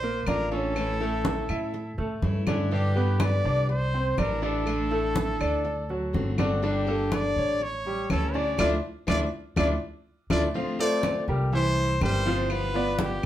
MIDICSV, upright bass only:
0, 0, Header, 1, 2, 480
1, 0, Start_track
1, 0, Key_signature, -1, "minor"
1, 0, Tempo, 489396
1, 742, Time_signature, 4, 2, 24, 8
1, 13002, End_track
2, 0, Start_track
2, 0, Title_t, "Upright bass"
2, 0, Program_c, 0, 32
2, 0, Note_on_c, 0, 34, 80
2, 224, Note_off_c, 0, 34, 0
2, 260, Note_on_c, 0, 33, 96
2, 1398, Note_off_c, 0, 33, 0
2, 1460, Note_on_c, 0, 45, 78
2, 1907, Note_off_c, 0, 45, 0
2, 1939, Note_on_c, 0, 45, 61
2, 2163, Note_off_c, 0, 45, 0
2, 2180, Note_on_c, 0, 43, 93
2, 3318, Note_off_c, 0, 43, 0
2, 3378, Note_on_c, 0, 36, 84
2, 4062, Note_off_c, 0, 36, 0
2, 4100, Note_on_c, 0, 33, 97
2, 5239, Note_off_c, 0, 33, 0
2, 5303, Note_on_c, 0, 38, 85
2, 5985, Note_off_c, 0, 38, 0
2, 6024, Note_on_c, 0, 31, 89
2, 7162, Note_off_c, 0, 31, 0
2, 7221, Note_on_c, 0, 33, 81
2, 7904, Note_off_c, 0, 33, 0
2, 7944, Note_on_c, 0, 38, 89
2, 8391, Note_off_c, 0, 38, 0
2, 8423, Note_on_c, 0, 38, 83
2, 8603, Note_off_c, 0, 38, 0
2, 8902, Note_on_c, 0, 38, 86
2, 9082, Note_off_c, 0, 38, 0
2, 9386, Note_on_c, 0, 38, 90
2, 9564, Note_off_c, 0, 38, 0
2, 10101, Note_on_c, 0, 38, 93
2, 10281, Note_off_c, 0, 38, 0
2, 11060, Note_on_c, 0, 36, 81
2, 11742, Note_off_c, 0, 36, 0
2, 11782, Note_on_c, 0, 31, 95
2, 12916, Note_off_c, 0, 31, 0
2, 13002, End_track
0, 0, End_of_file